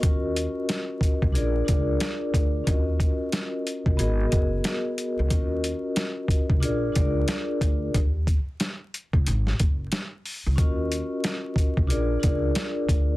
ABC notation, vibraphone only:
X:1
M:4/4
L:1/8
Q:"Swing 16ths" 1/4=91
K:Ebm
V:1 name="Vibraphone"
[DFGBe]3 z [=DFAB=d] [DFABd]2 z | [DFGBe]3 z [CGABe] [CGABe]2 z | [DFGBe]3 z [=DFAB=d] [DFABd]2 z | z8 |
[DFGBe]3 z [=DFAB=d] [DFABd]2 z |]